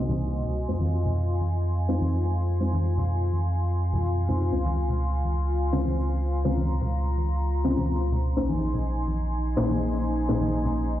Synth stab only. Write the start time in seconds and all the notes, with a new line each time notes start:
Already playing: C3 A#3 C4 D#4 F#4 C5
0.69 G#3 C4 D#4 F4 C5
1.89 G#3 C4 D#4 F4 C5
2.60 G#3 C4 D#4 F4 C5
4.29 C#3 G#3 C4 D#4 F4 C5
4.53 C#3 G#3 C4 C#4 F4 C5
5.73 C#3 G#3 C4 C#4 F4 C5
6.45 C#3 G#3 C4 C#4 F4 C5
7.65 C#3 G#3 C4 C#4 F4 C5
8.37 A#2 A#3 C#4 D#4 G#4 C5
9.57 A#2 A#3 C#4 D#4 G#4 C5
10.29 A#2 A#3 C#4 D#4 G#4 C5